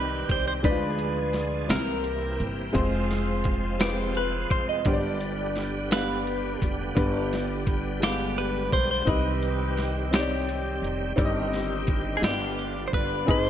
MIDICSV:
0, 0, Header, 1, 6, 480
1, 0, Start_track
1, 0, Key_signature, -3, "minor"
1, 0, Tempo, 701754
1, 444, Time_signature, 6, 3, 24, 8
1, 9233, End_track
2, 0, Start_track
2, 0, Title_t, "Clean electric guitar"
2, 0, Program_c, 0, 27
2, 0, Note_on_c, 0, 71, 82
2, 212, Note_off_c, 0, 71, 0
2, 215, Note_on_c, 0, 72, 90
2, 317, Note_off_c, 0, 72, 0
2, 325, Note_on_c, 0, 72, 84
2, 359, Note_off_c, 0, 72, 0
2, 444, Note_on_c, 0, 71, 76
2, 1138, Note_off_c, 0, 71, 0
2, 1168, Note_on_c, 0, 70, 64
2, 1680, Note_off_c, 0, 70, 0
2, 2609, Note_on_c, 0, 67, 73
2, 2851, Note_on_c, 0, 71, 68
2, 2855, Note_off_c, 0, 67, 0
2, 3084, Note_off_c, 0, 71, 0
2, 3087, Note_on_c, 0, 72, 84
2, 3205, Note_off_c, 0, 72, 0
2, 3208, Note_on_c, 0, 75, 89
2, 3326, Note_off_c, 0, 75, 0
2, 3326, Note_on_c, 0, 74, 80
2, 4051, Note_off_c, 0, 74, 0
2, 4054, Note_on_c, 0, 71, 66
2, 4563, Note_off_c, 0, 71, 0
2, 5498, Note_on_c, 0, 67, 72
2, 5732, Note_on_c, 0, 71, 81
2, 5739, Note_off_c, 0, 67, 0
2, 5969, Note_off_c, 0, 71, 0
2, 5972, Note_on_c, 0, 72, 92
2, 6087, Note_off_c, 0, 72, 0
2, 6095, Note_on_c, 0, 72, 85
2, 6216, Note_off_c, 0, 72, 0
2, 6216, Note_on_c, 0, 71, 80
2, 6943, Note_off_c, 0, 71, 0
2, 6945, Note_on_c, 0, 67, 64
2, 7447, Note_off_c, 0, 67, 0
2, 8324, Note_on_c, 0, 68, 54
2, 8367, Note_off_c, 0, 68, 0
2, 8374, Note_on_c, 0, 67, 66
2, 8804, Note_off_c, 0, 67, 0
2, 8807, Note_on_c, 0, 72, 55
2, 8849, Note_off_c, 0, 72, 0
2, 8852, Note_on_c, 0, 71, 88
2, 9094, Note_off_c, 0, 71, 0
2, 9101, Note_on_c, 0, 71, 84
2, 9176, Note_off_c, 0, 71, 0
2, 9176, Note_on_c, 0, 72, 84
2, 9233, Note_off_c, 0, 72, 0
2, 9233, End_track
3, 0, Start_track
3, 0, Title_t, "Upright piano"
3, 0, Program_c, 1, 0
3, 0, Control_c, 1, 64, 127
3, 0, Note_on_c, 1, 48, 55
3, 0, Note_on_c, 1, 60, 52
3, 0, Note_on_c, 1, 63, 50
3, 0, Note_on_c, 1, 67, 46
3, 0, Note_on_c, 1, 74, 56
3, 0, Note_on_c, 1, 75, 82
3, 284, Note_off_c, 1, 60, 0
3, 286, Note_off_c, 1, 63, 0
3, 289, Note_off_c, 1, 67, 0
3, 292, Note_off_c, 1, 74, 0
3, 430, Note_on_c, 1, 56, 61
3, 435, Note_on_c, 1, 50, 56
3, 435, Note_on_c, 1, 62, 58
3, 440, Note_on_c, 1, 63, 47
3, 441, Note_on_c, 1, 74, 74
3, 452, Control_c, 1, 64, 0
3, 455, Note_off_c, 1, 48, 0
3, 456, Note_off_c, 1, 75, 0
3, 485, Note_on_c, 1, 65, 64
3, 486, Note_off_c, 1, 63, 0
3, 572, Control_c, 1, 64, 127
3, 1005, Note_off_c, 1, 56, 0
3, 1007, Note_off_c, 1, 62, 0
3, 1010, Note_off_c, 1, 74, 0
3, 1032, Note_off_c, 1, 65, 0
3, 1133, Note_off_c, 1, 50, 0
3, 1145, Note_on_c, 1, 55, 48
3, 1151, Note_on_c, 1, 60, 49
3, 1153, Note_on_c, 1, 64, 49
3, 1154, Note_on_c, 1, 48, 46
3, 1164, Note_on_c, 1, 70, 50
3, 1172, Control_c, 1, 64, 0
3, 1308, Control_c, 1, 64, 127
3, 1722, Note_off_c, 1, 55, 0
3, 1725, Note_off_c, 1, 60, 0
3, 1726, Note_off_c, 1, 64, 0
3, 1732, Note_off_c, 1, 70, 0
3, 1853, Note_off_c, 1, 48, 0
3, 1865, Note_on_c, 1, 56, 82
3, 1869, Note_on_c, 1, 60, 71
3, 1873, Note_on_c, 1, 65, 67
3, 1883, Note_on_c, 1, 72, 95
3, 1893, Control_c, 1, 64, 0
3, 2005, Control_c, 1, 64, 127
3, 2442, Note_off_c, 1, 56, 0
3, 2445, Note_off_c, 1, 60, 0
3, 2446, Note_off_c, 1, 65, 0
3, 2451, Note_off_c, 1, 72, 0
3, 2590, Note_on_c, 1, 56, 50
3, 2594, Note_on_c, 1, 60, 46
3, 2599, Note_on_c, 1, 65, 48
3, 2605, Note_on_c, 1, 71, 56
3, 3165, Note_off_c, 1, 56, 0
3, 3167, Note_off_c, 1, 60, 0
3, 3170, Note_off_c, 1, 65, 0
3, 3173, Note_off_c, 1, 71, 0
3, 3316, Note_on_c, 1, 59, 58
3, 3321, Note_on_c, 1, 43, 52
3, 3321, Note_on_c, 1, 62, 59
3, 3328, Note_on_c, 1, 67, 59
3, 3332, Note_on_c, 1, 72, 56
3, 3334, Control_c, 1, 64, 0
3, 3373, Note_on_c, 1, 74, 77
3, 3374, Note_off_c, 1, 72, 0
3, 3452, Control_c, 1, 64, 127
3, 3888, Note_off_c, 1, 59, 0
3, 3891, Note_off_c, 1, 62, 0
3, 3894, Note_off_c, 1, 67, 0
3, 3917, Note_off_c, 1, 74, 0
3, 4016, Note_off_c, 1, 43, 0
3, 4039, Note_on_c, 1, 59, 50
3, 4040, Note_on_c, 1, 62, 47
3, 4046, Note_on_c, 1, 67, 44
3, 4053, Note_on_c, 1, 77, 54
3, 4609, Note_off_c, 1, 59, 0
3, 4610, Note_off_c, 1, 62, 0
3, 4613, Note_off_c, 1, 67, 0
3, 4616, Note_off_c, 1, 77, 0
3, 4753, Note_on_c, 1, 59, 69
3, 4757, Note_on_c, 1, 62, 68
3, 4761, Note_on_c, 1, 43, 58
3, 4764, Note_on_c, 1, 67, 70
3, 4769, Note_on_c, 1, 71, 83
3, 5326, Note_off_c, 1, 59, 0
3, 5328, Note_off_c, 1, 62, 0
3, 5332, Note_off_c, 1, 67, 0
3, 5334, Note_off_c, 1, 71, 0
3, 5456, Note_off_c, 1, 43, 0
3, 5473, Note_on_c, 1, 56, 42
3, 5475, Note_on_c, 1, 62, 46
3, 5484, Note_on_c, 1, 67, 44
3, 5491, Note_on_c, 1, 77, 55
3, 5518, Note_on_c, 1, 59, 51
3, 5524, Note_off_c, 1, 56, 0
3, 6047, Note_off_c, 1, 62, 0
3, 6052, Note_off_c, 1, 67, 0
3, 6055, Note_off_c, 1, 77, 0
3, 6069, Note_off_c, 1, 59, 0
3, 6192, Note_on_c, 1, 60, 61
3, 6198, Note_on_c, 1, 63, 67
3, 6202, Note_on_c, 1, 48, 54
3, 6205, Note_on_c, 1, 67, 60
3, 6206, Note_on_c, 1, 75, 67
3, 6215, Control_c, 1, 64, 0
3, 6315, Control_c, 1, 64, 127
3, 6765, Note_off_c, 1, 60, 0
3, 6768, Note_off_c, 1, 63, 0
3, 6772, Note_off_c, 1, 67, 0
3, 6772, Note_off_c, 1, 75, 0
3, 6896, Note_off_c, 1, 48, 0
3, 6916, Note_on_c, 1, 60, 55
3, 6921, Note_on_c, 1, 63, 46
3, 6928, Note_on_c, 1, 67, 47
3, 6933, Note_on_c, 1, 73, 47
3, 6973, Note_off_c, 1, 73, 0
3, 6980, Note_on_c, 1, 74, 58
3, 7487, Note_off_c, 1, 60, 0
3, 7489, Note_off_c, 1, 63, 0
3, 7493, Note_off_c, 1, 67, 0
3, 7518, Note_off_c, 1, 74, 0
3, 7633, Note_on_c, 1, 60, 84
3, 7640, Note_on_c, 1, 63, 78
3, 7641, Note_on_c, 1, 43, 65
3, 7647, Note_on_c, 1, 67, 74
3, 7648, Note_on_c, 1, 74, 63
3, 7654, Control_c, 1, 64, 0
3, 7690, Note_off_c, 1, 74, 0
3, 7694, Note_on_c, 1, 75, 88
3, 7766, Control_c, 1, 64, 127
3, 8205, Note_off_c, 1, 60, 0
3, 8208, Note_off_c, 1, 63, 0
3, 8212, Note_off_c, 1, 67, 0
3, 8235, Note_off_c, 1, 75, 0
3, 8335, Note_off_c, 1, 43, 0
3, 8354, Note_on_c, 1, 56, 44
3, 8358, Note_on_c, 1, 65, 50
3, 8365, Note_on_c, 1, 67, 47
3, 8367, Note_on_c, 1, 43, 53
3, 8371, Note_on_c, 1, 74, 54
3, 8372, Control_c, 1, 64, 0
3, 8400, Note_on_c, 1, 59, 56
3, 8403, Note_off_c, 1, 56, 0
3, 8510, Control_c, 1, 64, 127
3, 8927, Note_off_c, 1, 65, 0
3, 8930, Note_off_c, 1, 67, 0
3, 8933, Note_off_c, 1, 74, 0
3, 8948, Note_off_c, 1, 59, 0
3, 9057, Note_off_c, 1, 43, 0
3, 9068, Note_on_c, 1, 60, 65
3, 9074, Note_on_c, 1, 44, 60
3, 9076, Note_on_c, 1, 63, 63
3, 9083, Note_on_c, 1, 68, 61
3, 9085, Note_on_c, 1, 75, 81
3, 9093, Control_c, 1, 64, 0
3, 9197, Control_c, 1, 64, 127
3, 9233, Note_off_c, 1, 44, 0
3, 9233, Note_off_c, 1, 60, 0
3, 9233, Note_off_c, 1, 63, 0
3, 9233, Note_off_c, 1, 68, 0
3, 9233, Note_off_c, 1, 75, 0
3, 9233, End_track
4, 0, Start_track
4, 0, Title_t, "Tonewheel organ"
4, 0, Program_c, 2, 16
4, 0, Note_on_c, 2, 51, 52
4, 0, Note_on_c, 2, 55, 55
4, 0, Note_on_c, 2, 60, 54
4, 0, Note_on_c, 2, 67, 65
4, 415, Note_off_c, 2, 60, 0
4, 416, Note_off_c, 2, 67, 0
4, 417, Note_off_c, 2, 55, 0
4, 418, Note_off_c, 2, 51, 0
4, 446, Note_on_c, 2, 62, 49
4, 448, Note_on_c, 2, 53, 54
4, 451, Note_on_c, 2, 56, 48
4, 453, Note_on_c, 2, 67, 41
4, 493, Note_off_c, 2, 67, 0
4, 495, Note_on_c, 2, 68, 49
4, 1166, Note_off_c, 2, 62, 0
4, 1166, Note_on_c, 2, 67, 52
4, 1167, Note_off_c, 2, 53, 0
4, 1167, Note_on_c, 2, 60, 49
4, 1168, Note_off_c, 2, 56, 0
4, 1168, Note_on_c, 2, 52, 55
4, 1168, Note_on_c, 2, 58, 46
4, 1191, Note_off_c, 2, 68, 0
4, 1886, Note_off_c, 2, 67, 0
4, 1887, Note_off_c, 2, 52, 0
4, 1887, Note_off_c, 2, 58, 0
4, 1887, Note_off_c, 2, 60, 0
4, 1894, Note_on_c, 2, 53, 54
4, 1896, Note_on_c, 2, 56, 53
4, 1898, Note_on_c, 2, 67, 58
4, 1902, Note_on_c, 2, 60, 57
4, 1936, Note_off_c, 2, 67, 0
4, 1951, Note_on_c, 2, 65, 73
4, 3303, Note_off_c, 2, 53, 0
4, 3304, Note_off_c, 2, 56, 0
4, 3307, Note_off_c, 2, 60, 0
4, 3329, Note_on_c, 2, 50, 51
4, 3330, Note_on_c, 2, 59, 46
4, 3331, Note_on_c, 2, 55, 47
4, 3332, Note_off_c, 2, 65, 0
4, 3336, Note_on_c, 2, 67, 57
4, 6179, Note_off_c, 2, 50, 0
4, 6180, Note_off_c, 2, 59, 0
4, 6181, Note_off_c, 2, 55, 0
4, 6183, Note_off_c, 2, 67, 0
4, 6189, Note_on_c, 2, 60, 45
4, 6193, Note_on_c, 2, 67, 58
4, 6198, Note_on_c, 2, 51, 57
4, 6198, Note_on_c, 2, 55, 49
4, 7609, Note_off_c, 2, 60, 0
4, 7611, Note_off_c, 2, 67, 0
4, 7613, Note_off_c, 2, 51, 0
4, 7613, Note_off_c, 2, 55, 0
4, 7640, Note_on_c, 2, 60, 58
4, 7641, Note_on_c, 2, 67, 70
4, 7644, Note_on_c, 2, 51, 63
4, 7645, Note_on_c, 2, 55, 52
4, 8356, Note_off_c, 2, 55, 0
4, 8361, Note_off_c, 2, 60, 0
4, 8362, Note_off_c, 2, 67, 0
4, 8363, Note_on_c, 2, 65, 59
4, 8364, Note_off_c, 2, 51, 0
4, 8364, Note_on_c, 2, 55, 46
4, 8366, Note_on_c, 2, 58, 41
4, 8369, Note_on_c, 2, 50, 53
4, 8409, Note_off_c, 2, 58, 0
4, 8409, Note_on_c, 2, 59, 53
4, 9082, Note_off_c, 2, 65, 0
4, 9083, Note_off_c, 2, 55, 0
4, 9085, Note_off_c, 2, 50, 0
4, 9093, Note_off_c, 2, 59, 0
4, 9093, Note_on_c, 2, 51, 52
4, 9095, Note_on_c, 2, 56, 51
4, 9099, Note_on_c, 2, 68, 56
4, 9101, Note_on_c, 2, 59, 38
4, 9136, Note_off_c, 2, 59, 0
4, 9137, Note_on_c, 2, 60, 44
4, 9233, Note_off_c, 2, 51, 0
4, 9233, Note_off_c, 2, 56, 0
4, 9233, Note_off_c, 2, 60, 0
4, 9233, Note_off_c, 2, 68, 0
4, 9233, End_track
5, 0, Start_track
5, 0, Title_t, "Upright bass"
5, 0, Program_c, 3, 32
5, 0, Note_on_c, 3, 36, 82
5, 173, Note_off_c, 3, 36, 0
5, 202, Note_on_c, 3, 36, 57
5, 424, Note_off_c, 3, 36, 0
5, 438, Note_on_c, 3, 38, 87
5, 1135, Note_off_c, 3, 38, 0
5, 1160, Note_on_c, 3, 36, 86
5, 1616, Note_off_c, 3, 36, 0
5, 1643, Note_on_c, 3, 31, 74
5, 1865, Note_off_c, 3, 31, 0
5, 1883, Note_on_c, 3, 29, 81
5, 3058, Note_off_c, 3, 29, 0
5, 3083, Note_on_c, 3, 29, 60
5, 3305, Note_off_c, 3, 29, 0
5, 3321, Note_on_c, 3, 31, 83
5, 4496, Note_off_c, 3, 31, 0
5, 4529, Note_on_c, 3, 29, 60
5, 4749, Note_off_c, 3, 29, 0
5, 4765, Note_on_c, 3, 31, 80
5, 5938, Note_off_c, 3, 31, 0
5, 5965, Note_on_c, 3, 35, 57
5, 6186, Note_off_c, 3, 35, 0
5, 6203, Note_on_c, 3, 36, 88
5, 7376, Note_off_c, 3, 36, 0
5, 7400, Note_on_c, 3, 29, 58
5, 7623, Note_off_c, 3, 29, 0
5, 7645, Note_on_c, 3, 31, 87
5, 8336, Note_off_c, 3, 31, 0
5, 8359, Note_on_c, 3, 31, 87
5, 8813, Note_off_c, 3, 31, 0
5, 8846, Note_on_c, 3, 31, 63
5, 9065, Note_off_c, 3, 31, 0
5, 9087, Note_on_c, 3, 32, 93
5, 9233, Note_off_c, 3, 32, 0
5, 9233, End_track
6, 0, Start_track
6, 0, Title_t, "Drums"
6, 201, Note_on_c, 9, 36, 78
6, 202, Note_on_c, 9, 42, 45
6, 269, Note_off_c, 9, 36, 0
6, 270, Note_off_c, 9, 42, 0
6, 437, Note_on_c, 9, 42, 65
6, 439, Note_on_c, 9, 36, 83
6, 505, Note_off_c, 9, 42, 0
6, 508, Note_off_c, 9, 36, 0
6, 675, Note_on_c, 9, 42, 47
6, 744, Note_off_c, 9, 42, 0
6, 911, Note_on_c, 9, 42, 40
6, 918, Note_on_c, 9, 38, 29
6, 980, Note_off_c, 9, 42, 0
6, 986, Note_off_c, 9, 38, 0
6, 1157, Note_on_c, 9, 42, 63
6, 1165, Note_on_c, 9, 38, 84
6, 1226, Note_off_c, 9, 42, 0
6, 1233, Note_off_c, 9, 38, 0
6, 1396, Note_on_c, 9, 42, 41
6, 1465, Note_off_c, 9, 42, 0
6, 1641, Note_on_c, 9, 42, 41
6, 1710, Note_off_c, 9, 42, 0
6, 1879, Note_on_c, 9, 42, 66
6, 1881, Note_on_c, 9, 36, 83
6, 1947, Note_off_c, 9, 42, 0
6, 1950, Note_off_c, 9, 36, 0
6, 2124, Note_on_c, 9, 42, 47
6, 2130, Note_on_c, 9, 38, 29
6, 2192, Note_off_c, 9, 42, 0
6, 2199, Note_off_c, 9, 38, 0
6, 2354, Note_on_c, 9, 42, 40
6, 2362, Note_on_c, 9, 36, 76
6, 2422, Note_off_c, 9, 42, 0
6, 2431, Note_off_c, 9, 36, 0
6, 2597, Note_on_c, 9, 42, 68
6, 2604, Note_on_c, 9, 38, 85
6, 2665, Note_off_c, 9, 42, 0
6, 2672, Note_off_c, 9, 38, 0
6, 2835, Note_on_c, 9, 42, 41
6, 2903, Note_off_c, 9, 42, 0
6, 3083, Note_on_c, 9, 36, 71
6, 3083, Note_on_c, 9, 42, 44
6, 3151, Note_off_c, 9, 36, 0
6, 3151, Note_off_c, 9, 42, 0
6, 3316, Note_on_c, 9, 42, 62
6, 3322, Note_on_c, 9, 36, 85
6, 3385, Note_off_c, 9, 42, 0
6, 3390, Note_off_c, 9, 36, 0
6, 3560, Note_on_c, 9, 42, 46
6, 3628, Note_off_c, 9, 42, 0
6, 3801, Note_on_c, 9, 42, 37
6, 3808, Note_on_c, 9, 38, 29
6, 3869, Note_off_c, 9, 42, 0
6, 3876, Note_off_c, 9, 38, 0
6, 4044, Note_on_c, 9, 42, 73
6, 4051, Note_on_c, 9, 38, 90
6, 4112, Note_off_c, 9, 42, 0
6, 4119, Note_off_c, 9, 38, 0
6, 4289, Note_on_c, 9, 42, 41
6, 4358, Note_off_c, 9, 42, 0
6, 4527, Note_on_c, 9, 36, 65
6, 4535, Note_on_c, 9, 42, 43
6, 4596, Note_off_c, 9, 36, 0
6, 4603, Note_off_c, 9, 42, 0
6, 4765, Note_on_c, 9, 36, 87
6, 4767, Note_on_c, 9, 42, 66
6, 4834, Note_off_c, 9, 36, 0
6, 4836, Note_off_c, 9, 42, 0
6, 5012, Note_on_c, 9, 42, 48
6, 5019, Note_on_c, 9, 38, 32
6, 5081, Note_off_c, 9, 42, 0
6, 5087, Note_off_c, 9, 38, 0
6, 5244, Note_on_c, 9, 42, 44
6, 5246, Note_on_c, 9, 36, 74
6, 5312, Note_off_c, 9, 42, 0
6, 5315, Note_off_c, 9, 36, 0
6, 5487, Note_on_c, 9, 42, 72
6, 5495, Note_on_c, 9, 38, 91
6, 5556, Note_off_c, 9, 42, 0
6, 5563, Note_off_c, 9, 38, 0
6, 5731, Note_on_c, 9, 42, 50
6, 5800, Note_off_c, 9, 42, 0
6, 5968, Note_on_c, 9, 36, 77
6, 5974, Note_on_c, 9, 42, 41
6, 6036, Note_off_c, 9, 36, 0
6, 6042, Note_off_c, 9, 42, 0
6, 6204, Note_on_c, 9, 42, 64
6, 6206, Note_on_c, 9, 36, 90
6, 6273, Note_off_c, 9, 42, 0
6, 6274, Note_off_c, 9, 36, 0
6, 6447, Note_on_c, 9, 42, 44
6, 6515, Note_off_c, 9, 42, 0
6, 6686, Note_on_c, 9, 42, 38
6, 6693, Note_on_c, 9, 38, 29
6, 6754, Note_off_c, 9, 42, 0
6, 6761, Note_off_c, 9, 38, 0
6, 6927, Note_on_c, 9, 42, 80
6, 6934, Note_on_c, 9, 38, 91
6, 6995, Note_off_c, 9, 42, 0
6, 7002, Note_off_c, 9, 38, 0
6, 7174, Note_on_c, 9, 42, 46
6, 7242, Note_off_c, 9, 42, 0
6, 7417, Note_on_c, 9, 42, 40
6, 7485, Note_off_c, 9, 42, 0
6, 7647, Note_on_c, 9, 36, 94
6, 7651, Note_on_c, 9, 42, 64
6, 7716, Note_off_c, 9, 36, 0
6, 7719, Note_off_c, 9, 42, 0
6, 7887, Note_on_c, 9, 42, 42
6, 7894, Note_on_c, 9, 38, 31
6, 7956, Note_off_c, 9, 42, 0
6, 7962, Note_off_c, 9, 38, 0
6, 8120, Note_on_c, 9, 42, 39
6, 8126, Note_on_c, 9, 36, 75
6, 8188, Note_off_c, 9, 42, 0
6, 8194, Note_off_c, 9, 36, 0
6, 8366, Note_on_c, 9, 42, 75
6, 8373, Note_on_c, 9, 38, 103
6, 8434, Note_off_c, 9, 42, 0
6, 8441, Note_off_c, 9, 38, 0
6, 8611, Note_on_c, 9, 42, 45
6, 8680, Note_off_c, 9, 42, 0
6, 8846, Note_on_c, 9, 36, 72
6, 8851, Note_on_c, 9, 42, 45
6, 8915, Note_off_c, 9, 36, 0
6, 8919, Note_off_c, 9, 42, 0
6, 9085, Note_on_c, 9, 36, 93
6, 9085, Note_on_c, 9, 42, 66
6, 9154, Note_off_c, 9, 36, 0
6, 9154, Note_off_c, 9, 42, 0
6, 9233, End_track
0, 0, End_of_file